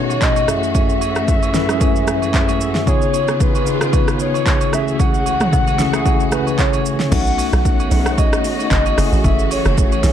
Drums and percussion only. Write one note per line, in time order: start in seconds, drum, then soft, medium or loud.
0.10 high agogo medium
0.10 shaker medium
0.22 kick medium
0.22 clap loud
0.22 shaker medium
0.36 high agogo medium
0.36 shaker medium
0.48 cross-stick medium
0.48 shaker loud
0.63 shaker soft
0.75 kick loud
0.75 high agogo medium
0.75 shaker medium
0.89 shaker soft
1.01 high agogo medium
1.01 shaker medium
1.16 cross-stick medium
1.16 shaker soft
1.28 kick medium
1.28 shaker medium
1.43 high agogo medium
1.43 shaker medium
1.54 snare medium
1.54 shaker loud
1.69 cross-stick medium
1.69 shaker medium
1.81 kick loud
1.81 high agogo medium
1.81 shaker medium
1.96 shaker medium
2.07 cross-stick loud
2.07 shaker medium
2.22 high agogo medium
2.22 shaker medium
2.34 kick medium
2.34 clap loud
2.34 shaker medium
2.49 high agogo medium
2.49 shaker medium
2.61 shaker loud
2.75 snare medium
2.75 shaker soft
2.87 kick loud
2.87 high agogo medium
2.87 shaker medium
3.02 shaker medium
3.14 high agogo medium
3.14 shaker medium
3.28 cross-stick medium
3.28 shaker soft
3.40 kick loud
3.40 shaker medium
3.55 high agogo medium
3.55 shaker medium
3.66 shaker loud
3.81 cross-stick loud
3.81 shaker medium
3.93 kick loud
3.93 high agogo medium
3.93 shaker medium
4.08 cross-stick medium
4.08 shaker medium
4.20 shaker medium
4.34 high agogo medium
4.34 shaker medium
4.46 kick loud
4.46 clap loud
4.46 shaker medium
4.61 high agogo medium
4.61 shaker medium
4.73 cross-stick medium
4.73 shaker loud
4.88 shaker soft
4.99 kick loud
4.99 high agogo medium
4.99 shaker medium
5.14 shaker medium
5.26 high agogo medium
5.26 shaker medium
5.40 cross-stick medium
5.40 mid tom medium
5.40 shaker medium
5.53 kick loud
5.53 low woodblock medium
5.53 shaker medium
5.67 high agogo medium
5.67 shaker medium
5.79 snare medium
5.79 shaker loud
5.93 cross-stick loud
5.93 shaker medium
6.05 kick loud
6.05 high agogo medium
6.05 shaker medium
6.20 shaker medium
6.32 cross-stick medium
6.32 shaker loud
6.47 high agogo medium
6.47 shaker medium
6.59 kick medium
6.59 clap loud
6.59 low woodblock medium
6.59 shaker medium
6.73 high agogo medium
6.73 shaker medium
6.86 shaker loud
7.00 snare medium
7.00 shaker medium
7.12 kick loud
7.12 crash loud
7.12 high agogo medium
7.12 shaker medium
7.27 shaker medium
7.38 open hi-hat medium
7.38 high agogo medium
7.38 shaker medium
7.53 cross-stick medium
7.53 shaker medium
7.65 kick loud
7.65 shaker medium
7.80 high agogo medium
7.80 shaker medium
7.91 open hi-hat medium
7.91 shaker loud
8.06 cross-stick loud
8.06 shaker medium
8.18 kick loud
8.18 high agogo medium
8.18 shaker medium
8.33 cross-stick loud
8.33 shaker medium
8.44 open hi-hat medium
8.44 shaker loud
8.59 high agogo medium
8.59 shaker medium
8.71 kick medium
8.71 clap loud
8.71 shaker medium
8.86 high agogo medium
8.86 shaker medium
8.98 cross-stick medium
8.98 open hi-hat medium
8.98 shaker loud
9.13 shaker medium
9.24 kick loud
9.24 high agogo medium
9.24 shaker medium
9.39 shaker medium
9.51 open hi-hat medium
9.51 high agogo medium
9.51 shaker medium
9.65 cross-stick medium
9.65 shaker medium
9.78 kick loud
9.78 shaker medium
9.92 high agogo medium
9.92 shaker medium
10.03 snare medium
10.03 open hi-hat medium
10.03 shaker loud